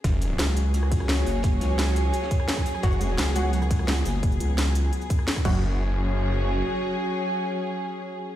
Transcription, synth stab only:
2.83 2.93 F#4 medium
2.83 2.93 C#5 medium
2.83 2.93 F#5 loud
3.36 4.21 F#4 medium
3.36 4.21 C#5 medium
3.36 4.21 F#5 medium
5.45 8.36 F#4 medium
5.45 8.36 C#5 medium
5.45 8.36 F#5 loud

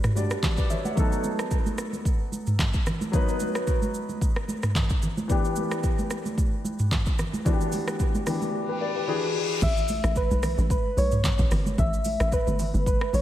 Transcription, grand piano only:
0.00 0.12 G3 medium
0.00 0.13 D4 medium
0.00 0.14 F#4 medium
0.00 0.14 B4 medium
0.15 0.97 G3 medium
0.15 0.97 D4 medium
0.15 0.97 F#4 medium
0.15 0.44 D5 medium
0.58 0.70 B4 medium
0.58 0.70 D5 medium
0.70 0.85 C#5 medium
0.70 0.84 E5 medium
0.85 1.11 D5 medium
0.85 1.11 F#5 medium
0.95 3.09 F#3 medium
0.95 3.09 B3 medium
0.95 3.10 D#4 medium
0.95 3.10 A4 medium
3.12 5.25 F#3 medium
3.12 5.25 B3 medium
3.12 5.26 D#4 medium
3.12 5.27 B4 medium
5.28 7.41 E3 medium
5.28 7.42 B3 medium
5.28 7.42 D4 medium
5.28 7.43 G4 medium
7.45 8.24 E3 medium
7.45 8.25 B3 medium
7.45 8.26 D4 medium
7.45 7.53 F#4 medium
7.53 8.26 G4 medium
8.26 9.06 E3 medium
8.26 9.08 B3 medium
8.26 9.06 D4 medium
8.26 8.54 G4 medium
8.69 8.81 G4 medium
8.69 8.80 B4 medium
8.81 8.94 B4 medium
8.81 8.95 D5 medium
8.96 9.22 G4 medium
8.96 9.22 B4 medium
9.07 9.62 E3 medium
9.07 9.62 D4 medium
9.07 9.62 F#4 medium
9.07 9.63 G#4 medium

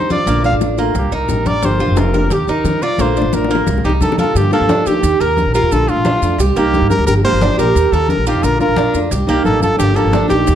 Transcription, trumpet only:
0.12 0.43 D5 loud
0.46 0.55 F5 medium
0.98 1.12 G4 medium
1.14 1.49 A#4 medium
1.47 1.67 D5 loud
1.65 2.01 C5 medium
1.99 2.35 A#4 medium
2.33 2.48 G4 medium
2.49 2.84 A#4 medium
2.83 3.03 D5 loud
3.01 3.36 C5 medium
3.34 3.68 A#4 medium
3.85 3.92 G4 medium
4.02 4.17 A4 loud
4.19 4.38 A4 loud
4.37 4.53 G4 medium
4.53 4.88 A4 loud
4.87 5.22 G4 loud
5.21 5.54 A#4 loud
5.54 5.74 A#4 loud
5.72 5.91 A4 loud
5.90 6.40 F4 loud
6.57 6.88 G4 loud
6.90 7.06 A#4 loud
7.07 7.15 A#4 loud
7.25 7.56 C5 loud
7.59 7.94 A#4 loud
7.92 8.11 A4 loud
8.10 8.27 A#4 loud
8.27 8.45 G4 loud
8.43 8.60 A#4 loud
8.61 8.99 A#4 loud
9.29 9.45 G4 medium
9.45 9.61 A4 loud
9.63 9.78 A4 loud
9.79 9.98 G4 loud
9.96 10.29 A4 loud
10.30 10.55 G4 medium

